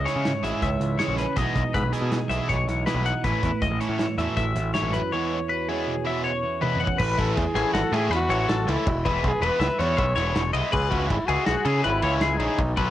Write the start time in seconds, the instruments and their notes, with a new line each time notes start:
Already playing: clean electric guitar C#3 G#3 E4
0.05 overdriven electric guitar G#3 C#4 E4 G#4, clean electric guitar C#4 C#5, snare, closed hi-hat
0.16 picked electric bass C#3
0.25 clean electric guitar G#2, snare, closed hi-hat
0.43 picked electric bass G#1, overdriven electric guitar G#3 C#4 E4 G#4, clean electric guitar E4 E5, closed hi-hat
0.62 picked electric bass C#2, clean electric guitar C#4 E5, kick, closed hi-hat
0.80 picked electric bass C#2, clean electric guitar E3, closed hi-hat
0.99 clean electric guitar C#3 C#5, overdriven electric guitar G#3 C#4 E4 G#4, snare, closed hi-hat
1.08 picked electric bass A#1
1.18 clean electric guitar C#4 B4, snare, closed hi-hat
1.37 picked electric bass B1, clean electric guitar B2 E3 G#3 D#4 G#4 D#5, overdriven electric guitar E3 B3 E4 G#4, kick, closed hi-hat
1.55 picked electric bass B1, clean electric guitar D#4, kick, closed hi-hat
1.74 picked electric bass G#2, clean electric guitar F#4 B4, kick, closed hi-hat
1.83 picked electric bass B1
1.93 overdriven electric guitar E3 B3 E4 G#4, clean electric guitar D#4 G#4, closed hi-hat
2.01 picked electric bass B2
2.11 clean electric guitar B2, snare, closed hi-hat
2.29 picked electric bass B1, overdriven electric guitar E3 B3 E4 G#4, clean electric guitar G#4 E5, closed hi-hat
2.49 picked electric bass B1, clean electric guitar D#4 C#5, kick, snare, closed hi-hat
2.67 picked electric bass B1, clean electric guitar E3, snare, closed hi-hat
2.86 clean electric guitar B2 B4, overdriven electric guitar E3 B3 E4 G#4, snare, closed hi-hat
2.94 picked electric bass B1
3.06 clean electric guitar D#4 F#5, closed hi-hat
3.24 picked electric bass A1, clean electric guitar A2 B4, overdriven electric guitar E3 A3 C#4 E4, kick, closed hi-hat
3.43 picked electric bass E2, clean electric guitar E4, kick, closed hi-hat
3.61 picked electric bass C#2, clean electric guitar E4 D#5, kick, closed hi-hat
3.70 picked electric bass A1
3.80 overdriven electric guitar E3 A3 C#4 E4, clean electric guitar E4 C#5, closed hi-hat
3.89 picked electric bass A2
3.99 clean electric guitar E3, snare, closed hi-hat
4.18 picked electric bass E2, overdriven electric guitar E3 A3 C#4 E4, clean electric guitar F#4 E5, closed hi-hat
4.37 picked electric bass A1, clean electric guitar E4 E5, kick, closed hi-hat
4.55 picked electric bass A1, clean electric guitar E3, snare, closed hi-hat
4.74 clean electric guitar G#2 C#5, overdriven electric guitar E3 A3 C#4 E4, snare, closed hi-hat
4.82 picked electric bass A1
4.93 clean electric guitar F#2 B4, closed hi-hat
5.12 clean electric guitar E2 C#5, overdriven electric guitar E3 G#3 B3 E4
5.32 clean electric guitar C#4
5.49 clean electric guitar F#4 B4
5.68 overdriven electric guitar E3 G#3 B3 E4, clean electric guitar C#4 G#4
5.87 clean electric guitar B2
6.05 overdriven electric guitar E3 G#3 B3 E4, clean electric guitar F#4 E5
6.24 clean electric guitar C#4 C#5
6.43 clean electric guitar E3
6.62 clean electric guitar E2 B4, overdriven electric guitar E3 G#3 B3 E4, high tom
6.75 mid tom
6.80 clean electric guitar C#4 F#5
6.87 kick
6.98 picked electric bass A1, clean electric guitar B4, trumpet B4, kick, crash
7.18 picked electric bass A1, overdriven electric guitar E3 A3 C#4 E4, trumpet A4, kick, snare, ride
7.36 picked electric bass E2, trumpet G#4, kick, snare, ride
7.55 picked electric bass A1, overdriven electric guitar E3 A3 C#4 E4, clean electric guitar G#4, snare, ride
7.73 picked electric bass G#1, clean electric guitar F#4, trumpet A4, snare, ride
7.92 picked electric bass A2, overdriven electric guitar E3 A3 C#4 E4, clean electric guitar G#4, trumpet G#4, snare, ride
8.10 picked electric bass E2, clean electric guitar B4, snare, ride
8.15 trumpet F#4
8.29 picked electric bass A1, overdriven electric guitar E3 A3 C#4 E4, clean electric guitar C#5, ride
8.48 picked electric bass A1, clean electric guitar A4, snare, ride
8.67 picked electric bass C#2, overdriven electric guitar E3 A3 C#4 E4, trumpet E4, snare, ride
8.87 picked electric bass E1, kick, ride
9.05 picked electric bass E1, overdriven electric guitar E3 G#3 B3 E4, clean electric guitar B4, kick, ride
9.24 picked electric bass B1, trumpet G#4, kick, ride
9.41 picked electric bass E1, overdriven electric guitar E3 G#3 B3 E4, clean electric guitar B4, ride
9.45 trumpet B4
9.60 picked electric bass C#2, trumpet B4, clean electric guitar E5, snare, ride
9.79 picked electric bass E2, overdriven electric guitar E3 G#3 B3 E4, clean electric guitar C#5, trumpet C#5, snare, ride
9.97 picked electric bass B1, clean electric guitar E5, kick, ride
10.16 picked electric bass E1, overdriven electric guitar E3 G#3 B3 E4, clean electric guitar C#5, snare, ride
10.35 picked electric bass E1, snare, ride
10.53 picked electric bass C2, overdriven electric guitar E3 G#3 B3 E4, clean electric guitar D#5, ride
10.72 picked electric bass C#2, trumpet G#4, clean electric guitar B4, kick, crash
10.90 picked electric bass C#2, overdriven electric guitar C#3 G#3 C#4 E4, trumpet F#4, kick, ride
11.09 picked electric bass G#1, trumpet E4, kick, ride
11.26 picked electric bass C#2, overdriven electric guitar G#3 C#4 E4, trumpet F#4, clean electric guitar G#4, ride
11.30 overdriven electric guitar C#3
11.46 picked electric bass B1, clean electric guitar F#4, trumpet G#4, snare, ride
11.65 picked electric bass C#3, overdriven electric guitar C#3 G#3 C#4 E4, clean electric guitar G#4, ride
11.83 picked electric bass G#1, trumpet E4, clean electric guitar B4, ride
12.02 picked electric bass C#2, overdriven electric guitar C#3 G#3 C#4 E4, clean electric guitar C#5, ride
12.20 picked electric bass C#2, clean electric guitar G#4, snare, ride
12.38 picked electric bass A#1, overdriven electric guitar C#3 G#3 C#4 E4, trumpet D#4, ride
12.58 picked electric bass B1, kick, ride
12.77 picked electric bass B1, overdriven electric guitar F#3 B3 D#4 A4, clean electric guitar B4, kick, snare, ride